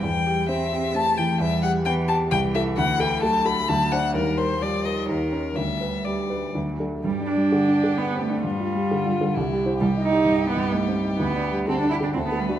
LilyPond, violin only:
\new Staff \with { instrumentName = "Violin" } { \time 3/4 \key c \major \tempo 4 = 130 g''4 e''4 a''8 g''8 | \key g \major e''8 fis''8 g''8 a''8 g''8 e''8 | fis''8 g''8 a''8 b''8 a''8 fis''8 | bes'8 c''8 d''8 ees''8 bes'4 |
e''4 d''4 r4 | g'2. | f'2 e'4 | g'2.~ |
g'4 a'8 g'8 a'8 b'8 | }